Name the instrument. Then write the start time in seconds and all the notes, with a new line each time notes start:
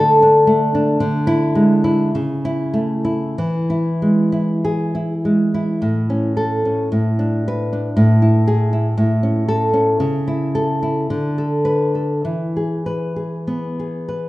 nylon-string guitar
Already playing: D3 A3 D4 A4
0.22 D4
0.47 A3
0.75 D4
1.00 D3
1.27 E4
1.55 G#3
1.84 E4
2.15 C#3
2.45 E4
2.74 A3
3.05 E4
3.38 E3
3.70 E4
4.02 G#3
4.32 E4
4.65 G#4
4.95 E4
5.25 G#3
5.54 E4
5.82 A2
6.10 C#4
6.37 A4
6.65 C#4
6.92 A2
7.19 D4
7.48 B4
7.73 D4
7.97 A2
8.22 E4
8.47 G#4
8.73 E4
8.98 A2
9.23 C#4
9.48 A4
9.74 C#4
10.00 C#3
10.28 E4
10.55 A4
10.83 E4
11.10 D3
11.38 A4
11.65 B4
11.95 A4
12.25 E3
12.57 G#4
12.86 B4
13.16 G#4
13.47 B3
13.79 G#4
14.09 B4